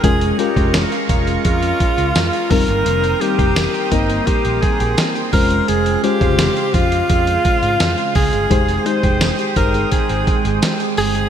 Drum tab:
HH |xxxxxxxxxxxxxxox|xxxxxxxxxxxxxxox|xxxxxxxxxxxxxxox|xxxxxxxxxxxxxxox|
TB |----x-------x---|----x-------x---|----x-------x---|----x-------x---|
SD |----o-------o---|----o-------o---|----o-------o---|----o-------o---|
BD |o--o--o-o-o---o-|---o--o-o-o---o-|---o--o-o-o---o-|o--o--o-o-o-----|